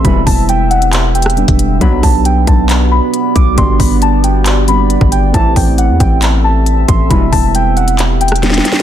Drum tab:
HH |x-----o-----x-----x--x--x-----x-x-x-x--x--x-----|x-----o-----x-----x-----x-----------x-----x-----|x-----o-----x-----x-----x-----x-----x-----x-----|x-----o-----x-----x-----x-----------x-----x-----|
CP |------------------------x-----------------------|------------------------x-----------------------|------------------------x-----------------------|------------------------x-----------------------|
SD |---------------------------------r--------------|------------------------------------------------|------------------------------------------------|------------------------------------------------|
BD |o-----o--------------------------------o--------|o-----o-----------o-----------------------o-----|o-----o--------------------------------o--------|o-----o-----------o-----------------------o-----|

HH |x-----o-----x-----x--x--x-----x-x-x-x--x--x-----|
CP |------------------------x-----------------------|
SD |---------------------------------r--o-o-o-o-o---|
BD |o-----o-----------------------------------------|